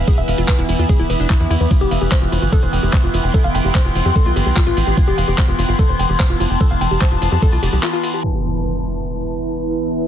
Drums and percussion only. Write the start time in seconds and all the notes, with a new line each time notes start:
0.08 kick, closed hi-hat, ride
0.18 closed hi-hat
0.28 open hi-hat, ride
0.38 closed hi-hat
0.48 kick, clap, closed hi-hat
0.59 closed hi-hat
0.69 open hi-hat, ride
0.79 closed hi-hat
0.89 kick, closed hi-hat, ride
0.99 closed hi-hat
1.10 open hi-hat, ride
1.20 closed hi-hat
1.30 kick, clap, closed hi-hat, ride
1.40 closed hi-hat
1.50 open hi-hat, ride
1.61 closed hi-hat
1.71 kick, closed hi-hat, ride
1.81 closed hi-hat
1.91 open hi-hat, ride
2.02 closed hi-hat
2.12 kick, clap, closed hi-hat
2.22 closed hi-hat
2.32 open hi-hat, ride
2.42 closed hi-hat
2.52 kick, closed hi-hat, ride
2.63 closed hi-hat
2.73 open hi-hat, ride
2.83 closed hi-hat
2.93 kick, clap, closed hi-hat
3.04 closed hi-hat
3.14 open hi-hat, ride
3.24 closed hi-hat
3.34 kick, closed hi-hat, ride
3.44 closed hi-hat
3.55 open hi-hat, ride
3.65 closed hi-hat
3.75 kick, clap, closed hi-hat
3.85 closed hi-hat
3.95 open hi-hat, ride
4.06 closed hi-hat
4.16 kick, closed hi-hat, ride
4.26 closed hi-hat
4.36 open hi-hat, ride
4.46 closed hi-hat
4.57 kick, clap, closed hi-hat
4.67 closed hi-hat
4.77 open hi-hat, ride
4.87 closed hi-hat
4.97 kick, closed hi-hat, ride
5.08 closed hi-hat
5.18 open hi-hat, ride
5.28 closed hi-hat
5.38 kick, clap, closed hi-hat
5.48 closed hi-hat
5.59 open hi-hat, ride
5.69 closed hi-hat
5.79 kick, closed hi-hat, ride
5.89 closed hi-hat
5.99 open hi-hat, ride
6.10 closed hi-hat
6.20 kick, clap, closed hi-hat
6.30 closed hi-hat
6.40 open hi-hat, ride
6.50 closed hi-hat
6.61 kick, closed hi-hat, ride
6.71 closed hi-hat
6.81 open hi-hat, ride
6.91 closed hi-hat
7.01 kick, clap, closed hi-hat, ride
7.12 closed hi-hat
7.22 open hi-hat, ride
7.32 closed hi-hat
7.42 kick, closed hi-hat, ride
7.53 closed hi-hat
7.63 open hi-hat, ride
7.73 closed hi-hat
7.83 clap, closed hi-hat, ride
7.93 closed hi-hat
8.04 open hi-hat, ride
8.14 closed hi-hat